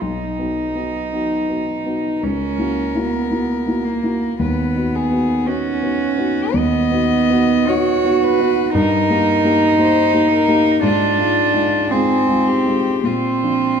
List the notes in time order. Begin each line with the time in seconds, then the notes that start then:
0.01 B1 D#4
0.39 B3 D#4 F#4
0.75 B3 D#4 F#4
1.13 B3 D#4 F#4
1.49 B3 D#4 F#4
1.86 B3 D#4 F#4
2.23 C#2 C#4 A#4
2.58 A#3 E4 F#4
2.95 A#3 E4 F#4
3.04 B3
3.31 A#3 E4 F#4
3.67 A#3 E4 F#4
3.85 A#3
4.03 A#3 E4 F#4
4.39 D#2 B3 B4
4.75 B3 D#4 F#4
4.95 G#4
5.11 B3 D#4 F#4
5.47 B3 C#4 D#4 F#4
5.83 B3 D#4 F#4
6.17 B3 D#4 F#4
6.54 D#2 B3 D#5
6.92 B3 D#4 F#4
7.30 B3 D#4 F#4
7.67 B3 D#4 F#4 C#5
8.04 B3 D#4 F#4
8.23 B4
8.39 B3 D#4 F#4
8.74 G2 D#4 A#4
9.10 A#3 D#4 G4
9.44 A#3 D#4 G4
9.78 A#3 D#4 G4 C5
10.13 A#3 D#4 G4
10.33 A#4
10.48 A#3 D#4 G4
10.83 G#2 D4 F4
11.18 G#3 D#4 F4
11.54 G#3 D#4 F4
11.91 G#3 C4 D#4 F4 G#4
12.28 G#3 D#4 F4
12.47 G4
12.66 G#3 D#4 F4
13.04 A#2 C4 F4
13.43 F3 D4 F4